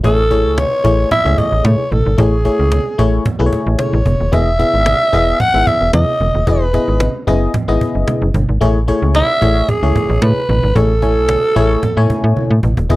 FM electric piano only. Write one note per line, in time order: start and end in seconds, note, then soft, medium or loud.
0.03 0.21 A3 medium
0.03 0.21 E4 medium
0.03 0.21 G#4 medium
0.03 0.21 C#5 medium
0.30 0.64 A3 medium
0.30 0.64 E4 medium
0.30 0.64 G#4 medium
0.30 0.65 C#5 medium
0.84 1.09 A3 medium
0.84 1.09 E4 medium
0.84 1.09 G#4 medium
0.84 1.09 C#5 medium
1.25 1.83 A3 medium
1.25 1.83 E4 medium
1.25 1.83 G#4 medium
1.25 1.83 C#5 medium
2.18 2.35 A3 medium
2.18 2.35 E4 medium
2.18 2.35 G#4 medium
2.18 2.36 C#5 medium
2.45 2.78 A3 medium
2.45 2.79 E4 medium
2.45 2.79 G#4 medium
2.45 2.79 C#5 medium
2.98 3.23 A3 loud
2.98 3.24 E4 medium
2.98 3.24 G#4 medium
2.98 3.24 C#5 loud
3.39 3.97 A3 medium
3.39 3.97 E4 medium
3.39 3.97 G#4 medium
3.39 3.46 B4 medium
3.46 4.01 C#5 loud
4.32 4.49 B3 medium
4.32 4.50 E4 medium
4.32 4.50 G#4 medium
4.32 4.50 D#5 medium
4.59 4.93 B3 medium
4.59 4.93 E4 medium
4.59 4.93 G#4 medium
4.59 4.93 E5 medium
5.13 5.38 B3 medium
5.13 5.38 E4 medium
5.13 5.38 G#4 medium
5.13 5.38 D#5 loud
5.54 6.12 B3 medium
5.54 6.12 E4 medium
5.54 6.12 G#4 medium
5.54 6.12 E5 medium
6.47 6.64 B3 medium
6.47 6.64 E4 medium
6.47 6.64 G#4 medium
6.47 6.64 D#5 medium
6.73 7.07 B3 medium
6.73 7.07 E4 medium
6.73 7.07 G#4 medium
6.73 7.08 D#5 medium
7.27 7.52 B3 medium
7.27 7.52 E4 medium
7.27 7.52 G#4 loud
7.27 7.53 D#5 loud
7.68 8.26 B3 medium
7.68 8.26 E4 medium
7.68 8.26 G#4 medium
7.68 8.26 D#5 loud
8.61 8.78 A3 loud
8.61 8.78 E4 medium
8.61 8.78 G#4 medium
8.61 8.79 C#5 loud
8.88 9.21 A3 medium
8.88 9.21 E4 medium
8.88 9.22 G#4 medium
8.88 9.22 C#5 loud
9.41 9.66 A3 medium
9.41 9.67 E4 medium
9.41 9.67 G#4 medium
9.41 9.67 C#5 loud
9.82 10.40 A3 medium
9.82 10.40 E4 medium
9.82 10.41 G#4 medium
9.82 10.41 C#5 medium
10.75 10.93 A3 medium
10.75 10.93 E4 medium
10.75 10.93 G#4 medium
10.75 10.93 C#5 medium
11.02 11.36 A3 medium
11.02 11.36 E4 medium
11.02 11.36 C#5 medium
11.02 11.36 G#5 medium
11.56 11.81 A3 loud
11.56 11.81 E4 medium
11.56 11.81 G#4 medium
11.56 11.81 C#5 loud
11.97 12.54 A3 medium
11.97 12.55 E4 medium
11.97 12.55 C#5 loud
11.97 12.55 G#5 medium
12.89 12.96 B3 medium
12.89 12.96 E4 medium
12.89 12.96 G#4 medium
12.89 12.96 D#5 medium